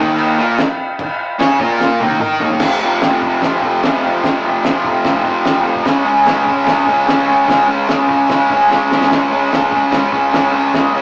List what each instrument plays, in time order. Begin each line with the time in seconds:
0.00 distorted electric guitar D#3 A#3 D#4
0.18 crash
0.39 distorted electric guitar A#3 F4 A#4
0.58 muted distorted electric guitar stroke, snare, crash
0.99 muted distorted electric guitar stroke, kick, crash
1.39 distorted electric guitar C#4 G#4 C#5, snare, crash
1.60 distorted electric guitar A#3 F4 A#4, kick
1.80 snare
2.00 distorted electric guitar D#3 A#3 D#4, high tom
2.10 high tom
2.20 distorted electric guitar D#4 A#4 D#5, mid tom
2.40 distorted electric guitar D#3 A#3 D#4, floor tom
2.50 floor tom
2.60 distorted electric guitar F2 C3, kick, snare, crash
2.65 distorted electric guitar F3
2.82 distorted electric guitar C3 F3
3.01 distorted electric guitar F2 C3 F3, snare, crash
3.22 distorted electric guitar F3, kick
3.27 distorted electric guitar C3
3.42 distorted electric guitar F2 C3, kick, snare, crash
3.46 distorted electric guitar F3
3.63 distorted electric guitar F2 C3 F3, kick
3.83 distorted electric guitar F2 C3 F3, snare, crash
4.04 distorted electric guitar C3 F3
4.24 distorted electric guitar F2 C3 F3, kick, snare, crash
4.45 distorted electric guitar C3 F3
4.64 distorted electric guitar F2 C3 F3, snare, crash
4.84 distorted electric guitar F3, kick
4.89 distorted electric guitar C3
5.05 distorted electric guitar F2 C3 F3, kick, snare, crash
5.24 distorted electric guitar C3 F3, kick
5.28 distorted electric guitar F2
5.45 distorted electric guitar F2 C3, snare, crash
5.49 distorted electric guitar F3
5.64 distorted electric guitar F3
5.68 distorted electric guitar C3
5.76 kick
5.85 distorted electric guitar C#3 G#3 C#4, kick, snare, crash
6.05 distorted electric guitar C#4
6.09 distorted electric guitar G#3
6.25 distorted electric guitar C#3 G#3 C#4, snare, crash
6.46 distorted electric guitar G#3 C#4, kick
6.65 distorted electric guitar C#3 G#3, kick, snare, crash
6.69 distorted electric guitar C#4
6.85 distorted electric guitar G#3 C#4, kick
6.90 distorted electric guitar C#3
7.06 distorted electric guitar C#3 G#3 C#4, snare, crash
7.27 distorted electric guitar G#3 C#4
7.47 distorted electric guitar C#3 G#3, kick, snare, crash
7.51 distorted electric guitar C#4
7.68 distorted electric guitar G#3 C#4
7.88 distorted electric guitar C#3 G#3 C#4, snare, crash
8.08 distorted electric guitar C#4, kick
8.12 distorted electric guitar G#3
8.28 distorted electric guitar C#3 G#3 C#4, kick, snare, crash
8.50 distorted electric guitar C#3 G#3 C#4, kick
8.70 distorted electric guitar C#3 G#3 C#4, snare
8.91 distorted electric guitar C#4, snare
8.95 distorted electric guitar G#3
9.01 snare
9.11 distorted electric guitar C#3 G#3 C#4, kick, snare, crash
9.31 distorted electric guitar C#4
9.35 distorted electric guitar G#3
9.51 distorted electric guitar C#3 G#3 C#4, snare, crash
9.72 distorted electric guitar G#3 C#4, kick
9.92 distorted electric guitar C#3 G#3 C#4, kick, snare, crash
10.12 distorted electric guitar C#3 G#3 C#4, kick
10.32 distorted electric guitar C#3 G#3 C#4, snare, crash
10.53 distorted electric guitar G#3 C#4
10.74 distorted electric guitar C#3 G#3 C#4, kick, snare, crash
10.94 distorted electric guitar C#4
10.98 distorted electric guitar G#3